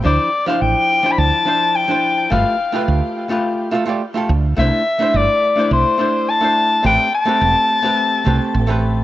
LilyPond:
<<
  \new Staff \with { instrumentName = "Soprano saxophone" } { \time 4/4 \key c \major \tempo 4 = 106 d''8. f''16 g''8.~ g''32 b''32 a''4 g''4 | f''4 r2. | e''4 d''4 c''4 a''4 | g''8 a''2. r8 | }
  \new Staff \with { instrumentName = "Hollow-body jazz guitar" } { \time 4/4 \key c \major <f d' e' c''>8 r16 <f d' e' c''>4 <f d' e' c''>8. <f d' e' c''>8. <f d' e' c''>8. | <a f' g' b'>8 r16 <a f' g' b'>4 <a f' g' b'>8. <a f' g' a'>16 <a f' g' d''>16 r16 <a f' g' a'>16 r8 | <a d' e' c''>8 r16 <a d' e' c''>4 <a d' e' c''>8. <a d' e' c''>8. <a d' e' c''>8. | <a c' g' b'>8 r16 <a c' g' b'>4 <a c' g' b'>8. <a c' g' b'>8. <a c' g' b'>8. | }
  \new Staff \with { instrumentName = "Fretless electric bass" } { \clef bass \time 4/4 \key c \major d,8 r8 a,,8 r8 d,8 r4. | g,,8 r8 d,8 r2 d,8 | c,8 r8 g,,8 r8 c,8 r4. | a,,8 r8 e,,8 r4 c,8 a,,4 | }
>>